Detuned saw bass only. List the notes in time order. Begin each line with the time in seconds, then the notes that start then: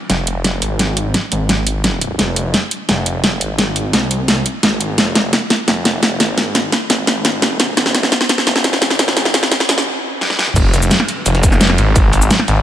0.10 F1
0.62 G#1
1.32 G#1
2.19 F1
2.89 F1
3.41 G#1
3.93 C2
4.28 C2
4.63 G#1
4.98 F1
5.68 F1
6.20 G#1
6.90 G#1
7.77 F1
8.47 F1
8.99 G#1
9.69 D#1
10.56 F1
11.26 F1
11.78 G#1
12.48 G#1